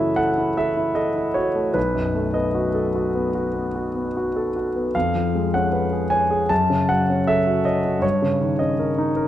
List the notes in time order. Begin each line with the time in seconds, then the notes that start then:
Already playing: F#2 C#3 E3 A3 E4 F#4 A4 C#5 D#5 E5
0.16 A4 F#5
0.38 E4
0.57 A4 E5
0.77 E4
0.95 A4 D#5
1.16 E4
1.34 F#4 C#5
1.55 A3
1.74 B1 B4
1.94 F#2
2.15 A3
2.34 B3 D#5
2.55 F#4
2.74 A4
2.95 F#4
3.15 B3
3.35 F#4
3.54 B3
3.75 F#4
3.96 B3
4.17 F#4
4.36 A4
4.56 F#4
4.76 B3
4.95 F2 F5
5.15 F3
5.35 G#3
5.54 C#4 F#5
5.72 B4
5.93 G#4
6.10 C#5 G#5
6.30 G#4
6.49 F#2 A5
6.70 C#3
6.89 F#3 F#5
7.09 C#4
7.27 A4 E5
7.47 F#4
7.65 C#5 D#5
7.85 F#4
7.99 G2 C#5
8.22 C#3
8.41 D#3
8.59 C#4 D#5
8.79 A#4
8.98 D#4
9.16 A#4